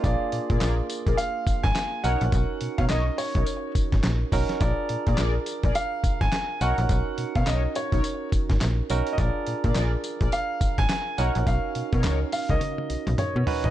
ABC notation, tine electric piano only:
X:1
M:4/4
L:1/8
Q:"Swing 16ths" 1/4=105
K:Cblyd
V:1 name="Tine electric piano"
[B,=DFA]3 z4 [^C^D^F^A]- | [^C^D^F^A]2 z4 z [CDFA] | [=DFAB]3 z4 [^C^D^F^A]- | [^C^D^F^A]2 z4 z [CDFA] |
[=DFAB]3 z4 [^C^D^F^A]- | [^C^D^F^A]2 z4 z [CDF=B] |]